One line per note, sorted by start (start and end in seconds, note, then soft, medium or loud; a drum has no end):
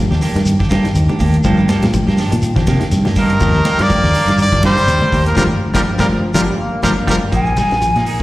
0.00 0.13 F3 medium
0.11 0.20 D#2 medium
0.11 0.21 D4 soft
0.11 0.22 G4 medium
0.11 snare soft
0.11 shekere soft
0.21 0.38 A#3 medium
0.21 0.38 D4 medium
0.21 0.38 G4 medium
0.21 snare soft
0.21 open hi-hat medium
0.21 shekere medium
0.35 0.55 G2 medium
0.35 0.52 D#3 medium
0.35 snare soft
0.35 closed hi-hat medium
0.35 shekere soft
0.45 closed hi-hat medium
0.45 shekere loud
0.59 0.69 D4 soft
0.59 0.70 G4 medium
0.59 kick medium
0.59 snare soft
0.59 low conga medium
0.59 shekere soft
0.70 0.82 G2 medium
0.70 0.86 A#3 medium
0.70 0.86 D4 medium
0.70 0.87 G4 medium
0.70 kick medium
0.70 snare medium
0.70 closed hi-hat medium
0.70 high conga medium
0.70 shekere medium
0.84 1.01 D#3 medium
0.84 muted fingered electric bass stroke soft
0.84 snare soft
0.84 closed hi-hat medium
0.84 shekere soft
0.95 1.06 D#2 loud
0.95 closed hi-hat medium
0.95 shekere medium
1.09 1.25 D3 medium
1.09 1.19 D4 soft
1.09 1.19 G4 medium
1.09 high conga medium
1.09 shekere soft
1.19 1.40 D#2 medium
1.19 1.35 A#3 medium
1.19 1.36 D4 medium
1.19 1.36 G4 medium
1.19 kick medium
1.19 open hi-hat medium
1.19 high conga medium
1.19 shekere medium
1.33 closed hi-hat medium
1.33 shekere soft
1.44 1.64 G2 loud
1.44 1.58 F3 medium
1.44 1.61 F3 medium
1.44 1.58 A#3 medium
1.44 1.58 D4 medium
1.44 1.57 G4 medium
1.44 kick medium
1.44 closed hi-hat medium
1.44 low conga medium
1.44 shekere medium
1.57 1.68 A#3 medium
1.57 1.68 D4 medium
1.57 1.69 G4 medium
1.57 shekere soft
1.69 1.85 F3 medium
1.69 1.85 G3 medium
1.69 1.85 A#3 medium
1.69 1.85 D4 medium
1.69 1.85 G4 medium
1.69 snare soft
1.69 closed hi-hat soft
1.69 high conga medium
1.69 shekere medium
1.82 1.91 A#2 medium
1.82 snare medium
1.82 closed hi-hat medium
1.82 high conga medium
1.82 shekere soft
1.93 2.09 F3 medium
1.93 kick medium
1.93 closed hi-hat medium
1.93 high conga medium
1.93 shekere medium
2.07 2.16 G2 loud
2.07 2.18 A#3 medium
2.07 2.18 D4 medium
2.07 2.18 G4 medium
2.07 snare soft
2.07 shekere soft
2.18 2.34 F3 medium
2.18 2.34 D4 medium
2.18 2.35 G4 medium
2.18 muted clean electric guitar stroke medium
2.18 snare soft
2.18 open hi-hat medium
2.18 shekere medium
2.31 2.52 A#2 medium
2.31 2.47 D#3 medium
2.31 closed hi-hat medium
2.31 shekere soft
2.42 closed hi-hat medium
2.42 shekere medium
2.56 2.72 F3 medium
2.56 2.66 A#3 soft
2.56 2.67 D4 soft
2.56 2.67 G4 medium
2.56 kick medium
2.56 snare soft
2.56 low conga medium
2.56 shekere soft
2.67 2.78 C3 medium
2.67 2.83 F3 medium
2.67 2.83 A#3 medium
2.67 2.83 D4 medium
2.67 2.84 G4 medium
2.67 kick medium
2.67 snare medium
2.67 closed hi-hat medium
2.67 high conga medium
2.67 shekere medium
2.80 2.96 D#3 medium
2.80 muted fingered electric bass stroke soft
2.80 snare soft
2.80 closed hi-hat medium
2.80 shekere soft
2.91 3.03 G2 medium
2.91 snare soft
2.91 closed hi-hat medium
2.91 shekere medium
3.05 3.21 D3 medium
3.05 3.16 A#3 soft
3.05 3.16 D4 medium
3.05 3.16 G4 soft
3.05 snare medium
3.05 high conga medium
3.05 shekere soft
3.16 3.36 G2 medium
3.16 3.83 D#3 medium
3.16 3.32 F3 medium
3.16 3.32 A#3 medium
3.16 3.32 D4 medium
3.16 3.33 G4 medium
3.16 3.83 A#4 medium
3.16 kick medium
3.16 snare soft
3.16 open hi-hat medium
3.16 high conga medium
3.16 shekere medium
3.29 closed hi-hat medium
3.29 shekere soft
3.40 3.60 D#2 loud
3.40 3.56 F3 medium
3.40 3.54 A#3 medium
3.40 3.54 D4 medium
3.40 3.53 G4 medium
3.40 kick medium
3.40 closed hi-hat medium
3.40 low conga medium
3.40 shekere medium
3.54 3.65 D4 soft
3.54 3.65 G4 medium
3.54 shekere soft
3.65 3.81 A#3 medium
3.65 3.81 D4 medium
3.65 3.82 G4 medium
3.65 muted clean electric guitar stroke medium
3.65 closed hi-hat medium
3.65 high conga medium
3.65 shekere medium
3.79 3.88 G2 medium
3.79 4.40 A#3 loud
3.79 4.40 D5 loud
3.79 snare medium
3.79 closed hi-hat medium
3.79 shekere soft
3.89 4.05 F3 medium
3.89 kick medium
3.89 closed hi-hat medium
3.89 high conga medium
3.89 shekere medium
4.03 4.12 D#2 loud
4.03 4.14 G4 medium
4.03 snare soft
4.03 shekere soft
4.13 4.30 A#3 medium
4.13 4.31 D4 medium
4.13 4.31 G4 medium
4.13 open hi-hat medium
4.13 shekere medium
4.27 4.47 G2 medium
4.27 4.44 D#3 medium
4.27 snare soft
4.27 closed hi-hat medium
4.27 shekere soft
4.38 4.63 A#3 medium
4.38 4.63 D5 loud
4.38 closed hi-hat medium
4.38 shekere loud
4.52 4.68 F3 medium
4.52 4.63 D4 soft
4.52 4.64 G4 medium
4.52 kick medium
4.52 low conga medium
4.52 shekere soft
4.63 4.74 G2 medium
4.63 5.23 G3 medium
4.63 4.79 A#3 medium
4.63 4.80 D4 medium
4.63 4.80 G4 medium
4.63 5.23 C5 loud
4.63 kick medium
4.63 snare medium
4.63 closed hi-hat medium
4.63 high conga medium
4.63 shekere medium
4.76 4.92 D#3 medium
4.76 muted fingered electric bass stroke soft
4.76 snare soft
4.76 closed hi-hat medium
4.76 shekere soft
4.87 4.98 D#2 loud
4.87 closed hi-hat medium
4.87 shekere medium
5.01 5.17 D3 medium
5.01 5.12 D4 soft
5.01 5.12 G4 medium
5.01 high conga medium
5.01 shekere soft
5.12 5.32 D#2 medium
5.12 5.28 A#3 medium
5.12 5.28 D4 medium
5.12 5.29 G4 medium
5.12 kick medium
5.12 open hi-hat medium
5.12 shekere medium
5.26 5.36 F3 medium
5.26 5.37 A#4 medium
5.26 closed hi-hat medium
5.26 shekere soft
5.36 5.47 G1 medium
5.36 5.45 D3 medium
5.36 5.45 F3 medium
5.36 5.45 G3 medium
5.36 5.43 G3 medium
5.36 5.45 D4 medium
5.36 5.45 F4 medium
5.36 5.45 G4 medium
5.36 5.44 A#4 medium
5.36 kick medium
5.36 snare medium
5.36 high conga loud
5.36 shekere medium
5.74 5.83 G1 medium
5.74 5.81 D3 loud
5.74 5.81 F3 medium
5.74 5.81 G3 loud
5.74 5.82 G3 loud
5.74 5.82 D4 medium
5.74 5.82 F4 medium
5.74 5.82 G4 loud
5.74 5.81 A#4 medium
5.74 kick medium
5.74 snare medium
5.74 high conga loud
5.74 shekere loud
5.86 6.32 F3 medium
5.98 6.07 G1 medium
5.98 6.06 D3 medium
5.98 6.06 F3 medium
5.98 6.06 G3 loud
5.98 6.06 G3 medium
5.98 6.07 D4 medium
5.98 6.07 F4 medium
5.98 6.07 G4 loud
5.98 6.06 A#4 medium
5.98 kick medium
5.98 snare medium
5.98 high conga loud
5.98 shekere loud
6.34 6.45 G1 loud
6.34 6.43 D3 medium
6.34 6.43 F3 loud
6.34 6.58 G3 loud
6.34 6.43 G3 medium
6.34 6.42 G3 medium
6.34 6.44 D4 medium
6.34 6.43 F4 medium
6.34 6.43 G4 medium
6.34 6.41 A#4 loud
6.34 kick medium
6.34 snare medium
6.34 high conga loud
6.34 shekere loud
6.59 6.82 A#3 loud
6.83 6.94 G1 loud
6.83 6.92 D3 medium
6.83 6.92 F3 medium
6.83 6.90 G3 medium
6.83 6.92 G3 loud
6.83 7.29 A#3 medium
6.83 6.92 D4 medium
6.83 6.92 F4 medium
6.83 6.92 G4 medium
6.83 6.91 A#4 medium
6.83 kick medium
6.83 snare medium
6.83 high conga medium
6.83 shekere loud
7.07 7.18 G1 medium
7.07 7.17 D3 medium
7.07 7.17 F3 loud
7.07 7.14 G3 loud
7.07 7.17 G3 loud
7.07 7.17 D4 medium
7.07 7.17 F4 medium
7.07 7.17 G4 medium
7.07 7.16 A#4 medium
7.07 kick medium
7.07 snare medium
7.07 high conga loud
7.07 shekere loud
7.31 7.52 A#1 medium
7.31 7.46 F3 medium
7.31 7.48 F3 medium
7.31 7.45 A#3 medium
7.31 7.44 G#4 medium
7.31 8.23 G#5 loud
7.31 muted clean electric guitar stroke medium
7.31 kick medium
7.31 closed hi-hat medium
7.31 shekere medium
7.46 7.56 A#3 soft
7.46 7.57 D#4 soft
7.46 7.57 G#4 medium
7.46 shekere soft
7.57 7.73 F3 medium
7.57 7.73 G3 medium
7.57 7.73 A#3 medium
7.57 7.73 D#4 medium
7.57 7.74 G#4 medium
7.57 kick medium
7.57 snare medium
7.57 closed hi-hat soft
7.57 shekere medium
7.71 7.91 A#1 medium
7.71 snare medium
7.71 closed hi-hat soft
7.71 shekere soft
7.81 7.98 F3 medium
7.81 closed hi-hat medium
7.81 shekere medium
7.95 8.05 A#2 medium
7.95 8.05 A#3 soft
7.95 8.06 D#4 soft
7.95 8.06 G#4 soft
7.95 snare soft
7.95 closed hi-hat soft
8.06 8.22 F3 medium
8.06 8.22 A#3 medium
8.06 8.23 D#4 medium
8.06 8.23 G#4 medium
8.06 muted fingered electric bass stroke soft
8.06 open hi-hat medium